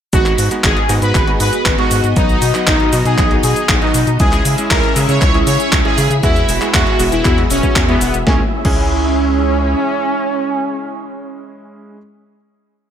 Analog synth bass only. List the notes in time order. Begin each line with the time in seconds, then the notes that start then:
0.13 G#1
0.38 G#2
0.64 G#1
0.89 G#2
1.02 G#2
1.15 G#1
1.40 G#2
1.66 G#1
1.91 G#2
2.04 G#2
2.17 B1
2.42 B2
2.67 B1
2.93 B2
3.05 B2
3.18 B1
3.44 B2
3.69 B1
3.94 B2
4.07 B2
4.20 C#2
4.45 C#3
4.71 C#2
4.96 C#3
5.09 C#3
5.22 C#2
5.47 C#3
5.73 C#2
5.98 C#3
6.10 C#3
6.23 E2
6.49 E1
6.74 E2
7.00 E1
7.12 E1
7.25 E2
7.50 E1
7.76 E2
8.01 E1
8.14 E1
8.27 C#2
8.65 C#2